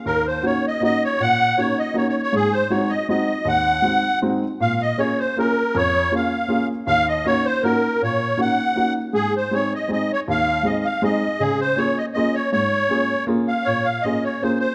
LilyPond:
<<
  \new Staff \with { instrumentName = "Accordion" } { \time 3/4 \key des \major \tempo 4 = 159 bes'8 c''8 des''8 ees''8 ees''8 des''8 | ges''4 des''8 ees''8 \tuplet 3/2 { des''8 des''8 des''8 } | aes'8 c''8 des''8 ees''8 ees''4 | ges''2 r4 |
f''8 ees''8 des''8 c''8 bes'4 | des''4 f''4. r8 | f''8 ees''8 des''8 c''8 bes'4 | des''4 ges''4. r8 |
aes'8 c''8 des''8 ees''8 ees''8 des''8 | f''4 ees''8 f''8 ees''4 | aes'8 c''8 des''8 ees''8 ees''8 des''8 | des''2 r8 f''8 |
\key bes \minor des''8 f''8 ees''8 des''8 c''8 c''8 | }
  \new Staff \with { instrumentName = "Upright piano" } { \time 3/4 \key des \major ees,4 <bes des' ees' ges'>8 r8 <bes des' ees' ges'>8 r8 | bes,4 <bes des' ees' ges'>8 r8 <bes des' ees' ges'>8 r8 | aes,4 <aes c' ees' ges'>8 r8 <aes c' ees' ges'>8 r8 | ees,4 <aes c' ees' ges'>8 r8 <aes c' ees' ges'>8 r8 |
bes,4 <bes des' f' aes'>8 r8 <bes des' f' aes'>8 r8 | f,4 <bes des' f' aes'>8 r8 <bes des' f' aes'>8 r8 | ees,4 <bes des' ees' ges'>8 r8 <bes des' ees' ges'>8 r8 | bes,4 <bes des' ees' ges'>8 r8 <bes des' ees' ges'>8 r8 |
aes,4 <aes c' ees' aes'>8 r8 <aes c' ees' aes'>8 r8 | ees,4 <aes c' ees' aes'>8 r8 <aes c' ees' aes'>8 r8 | des4 <bes des' f' aes'>8 r8 <bes des' f' aes'>8 r8 | aes,4 <bes des' f' aes'>8 r8 <bes des' f' aes'>8 r8 |
\key bes \minor bes,4 <bes des' f' aes'>8 r8 <bes des' f' aes'>8 r8 | }
>>